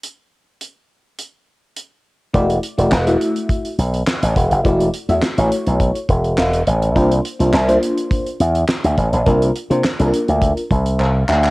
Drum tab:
HH |x---x---x---x---|xxxx-xxxxxxx-xxx|xxxx-xxxxxxx-xxx|xxxx-xxxxxxx-xxx|
CP |----------------|----x-------x---|----x-------x---|----x-------x---|
SD |----------------|----o-------o---|----o-------o---|----o-------o---|
BD |----------------|o-------o-----o-|o-------o-o-----|o-------o-----o-|

HH |xxxx-xxxxxxx----|
CP |----x-------x-xx|
SD |----o-----------|
BD |o-------o-o-----|